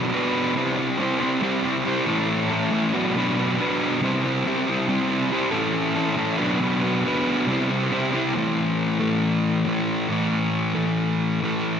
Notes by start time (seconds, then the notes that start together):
Already playing: B2 F#3 D4 F#4 B4
0.11 B3 D4 F#4 B4
0.54 C3 G3 C4 E4 G4 C5
0.76 C4 E4 G4 C5
0.98 C3 G3 C4 E4 G4 C5
1.20 C4 E4 G4 C5
1.41 C3 G3 C4 E4 G4 C5
1.63 C4 E4 G4 C5
1.84 C4 E4 G4 C5
2.06 A2 E3 A3 C#4 E4 A4
2.49 A3 C#4 E4 A4
2.71 A2 E3 A3 C#4 E4 A4
2.93 B2 F#3 B3 D4 F#4 B4
3.15 B2 F#3 B3 D4 F#4 B4
3.36 B3 D4 F#4 B4
3.58 B3 D4 F#4 B4
4.01 C3 G3 C4 E4 G4 C5
4.22 C4 E4 G4 C5
4.45 C3 G3 C4 E4 G4 C5
4.67 C4 E4 G4 C5
4.87 C3 G3 C4 E4 G4 C5
5.09 C4 E4 G4 C5
5.30 C4 E4 G4 C5
5.51 A2 E3 A3 C#4 E4 A4
5.95 A3 C#4 E4 A4
6.16 A2 E3 A3 C#4 E4 A4
6.38 B2 F#3 B3 D4 F#4 B4
6.60 B2 F#3 B3 D4 F#4 B4
6.81 B3 D4 F#4 B4
7.04 B3 D4 F#4 B4
7.47 C3 G3 C4 E4 G4 C5
7.69 C4 E4 G4 C5
7.91 C3 G3 C4 E4 G4 C5
8.12 C4 E4 G4 C5
8.34 A2 E3 A3
9.00 A2 E3 A3
9.65 A2 E3 A3
10.08 A2 E3 A3
10.75 A2 E3 A3
11.41 A2 E3 A3